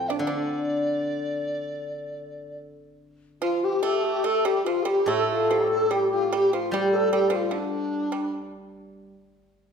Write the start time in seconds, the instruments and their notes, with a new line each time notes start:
Already playing: guzheng A2 F3 A3 C4 F4
0.08 pipa D4, dizi D5
0.15 dizi C5
0.19 guzheng D3, dizi D5
0.27 pipa D4
3.41 pipa F3, dizi F4, xiao F4
3.63 dizi G4, xiao G4
3.82 pipa A3, dizi A4
4.03 dizi G4, xiao G4
4.24 pipa A3, dizi A4, xiao A4
4.44 pipa G3, dizi G4, xiao G4
4.64 pipa F3, dizi F4, xiao F4
4.83 pipa G3, xiao A4
4.87 dizi G4, xiao G4
5.06 guzheng A2, pipa A3, dizi A4
5.10 xiao A4
5.30 dizi F4
5.50 pipa G3, dizi G4
5.70 dizi A4
5.90 pipa G3, dizi G4, xiao G4
6.11 dizi F4
6.31 pipa G3, dizi G4, xiao G4
6.52 pipa F3, dizi F4, xiao F4
6.71 guzheng G3, pipa G3, dizi G4, xiao G4
6.91 dizi A4
6.96 pipa F3, xiao A4
7.13 pipa G3, dizi G4
7.30 pipa F3, dizi F4
7.35 xiao F4
7.51 pipa D3, dizi D4
7.58 xiao D4
8.12 pipa G3